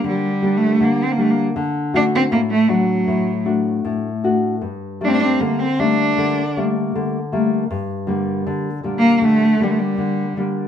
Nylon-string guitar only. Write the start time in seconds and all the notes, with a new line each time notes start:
Already playing: G3 A#3 D4
0.04 D3
0.42 G3 A#3 D4
0.81 D3
1.18 G3 A#3 D4
1.56 D3
1.94 A3 D4 F#4
2.31 A2
2.68 A3 D4 F#4
3.08 A2
3.45 A3 D4 F#4
3.85 A2
4.24 A3 D4 F#4
4.61 G2
5.01 G3 A3 A#3
5.41 D3
5.79 G3 A3 A#3
6.18 D3
6.57 G3 A3 A#3
6.95 D3
7.32 G3 A3 A#3
7.71 G2
8.07 D3 G3 A#3
8.47 D3
8.84 A#2 D3 G3
9.21 D3
9.60 D3 G3 A#3
9.98 D3
10.37 D3 G3 A#3